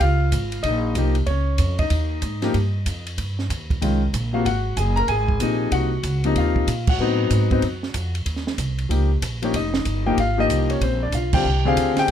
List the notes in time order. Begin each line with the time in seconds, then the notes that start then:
0.00 C#2 F4 F5, kick, ride
0.32 G#1, kick, hi-hat pedal, ride
0.52 ride
0.63 A#1 D#4 D#5, kick, ride
0.95 C2 F3 A#3 D#4 G4, kick, hi-hat pedal, ride
1.15 ride
1.26 C#2 C#4 C#5, kick, ride
1.58 F2, kick, hi-hat pedal, ride
1.79 D#4 D#5, kick, ride
1.90 D#2, kick, ride
2.22 G#2, kick, hi-hat pedal, ride
2.42 F3 A#3 D#4 G4, snare, ride
2.54 G2, kick, ride
2.86 F2, kick, hi-hat pedal, ride
3.07 ride
3.18 G2, kick, ride
3.39 snare
3.50 D#2, kick, hi-hat pedal, ride
3.70 kick, ride
3.82 C2 D#3 G#3 C#4 F4, kick, ride
4.13 A#1, kick, hi-hat pedal, ride
4.33 C3 F3 A#3 F4 F#4 F5
4.45 G#1 F#4 F#5, kick, ride
4.77 F#1 G#4 G#5, kick, hi-hat pedal, ride
4.96 A#4 A#5, ride
5.08 G#1 G#4 G#5, kick, ride
5.28 kick
5.40 A#1 C3 F3 A#3 D#4, kick, hi-hat pedal, ride
5.71 C2 F#4 F#5, kick, ride
6.03 C#2, kick, hi-hat pedal, ride
6.24 C3 F3 A#3 D#4, ride
6.36 D#2 F5, kick, ride
6.40 F4
6.56 kick
6.67 A#2, kick, hi-hat pedal, ride
6.87 F#4 F#5, kick, crash
6.99 A2 F#3 B3 C4 D#4
7.30 G#2, kick, hi-hat pedal, ride
7.51 F#3 B3 C4 D#4, kick, ride
7.62 F#2, kick, ride
7.83 snare
7.94 F2, kick, hi-hat pedal, ride
8.15 ride
8.26 D#2, kick, ride
8.36 snare
8.47 snare
8.58 C2, kick, hi-hat pedal, ride
8.78 ride
8.89 C#2 F3 A#3 D#4 G4, kick, ride
9.22 A#1, kick, hi-hat pedal, ride
9.42 F3 A#3 C#4 D#4 G4 C#5, ride
9.53 F1 D#4 D#5, kick, ride
9.74 snare
9.85 G1, kick, hi-hat pedal, ride
10.06 F3 A#3 D#4 G4 G5
10.17 G#1 F4 F5, kick, ride
10.38 F3 A#3 D#4 G4 D#5
10.42 D#4
10.49 C2, kick, hi-hat pedal, ride
10.70 C#4 C#5, ride
10.81 A#1 C4 C5, kick, ride
11.03 D4 D5
11.12 B1 F4 F5, kick, hi-hat pedal, ride
11.33 D3 G3 C4 F4 G4 G5, kick, crash
11.45 C2
11.65 D3 C4 G4 G#4 F5
11.69 F4
11.76 D2, kick, hi-hat pedal, ride
11.97 G5, muted upright bass stroke, snare, ride
12.01 G4